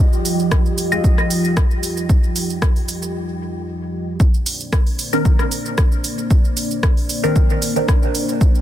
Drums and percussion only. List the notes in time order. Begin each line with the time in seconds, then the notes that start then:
0.13 shaker
0.25 open hi-hat, shaker
0.39 shaker
0.52 kick, cross-stick, shaker
0.66 shaker
0.78 open hi-hat, shaker
0.92 shaker
1.04 kick, shaker
1.18 cross-stick, shaker
1.31 open hi-hat, shaker
1.45 shaker
1.57 kick, cross-stick, shaker
1.71 shaker
1.83 open hi-hat, shaker
1.97 shaker
2.09 kick, shaker
2.23 shaker
2.36 open hi-hat, shaker
2.50 shaker
2.62 kick, cross-stick, shaker
2.76 open hi-hat, shaker
2.88 open hi-hat, shaker
3.02 shaker
4.20 kick, shaker
4.34 shaker
4.46 open hi-hat, shaker
4.60 shaker
4.73 kick, cross-stick, shaker
4.87 open hi-hat, shaker
4.99 open hi-hat, shaker
5.13 shaker
5.25 kick, shaker
5.39 cross-stick, shaker
5.51 open hi-hat, shaker
5.65 shaker
5.78 kick, cross-stick, shaker
5.92 shaker
6.04 open hi-hat, shaker
6.18 shaker
6.31 kick, shaker
6.45 shaker
6.57 open hi-hat, shaker
6.71 shaker
6.83 kick, cross-stick, shaker
6.97 open hi-hat, shaker
7.09 open hi-hat, shaker
7.23 shaker
7.36 kick, shaker
7.50 shaker
7.62 open hi-hat, shaker
7.76 shaker
7.88 kick, cross-stick, shaker
8.02 shaker
8.15 open hi-hat, shaker
8.29 shaker
8.41 kick, shaker
8.55 shaker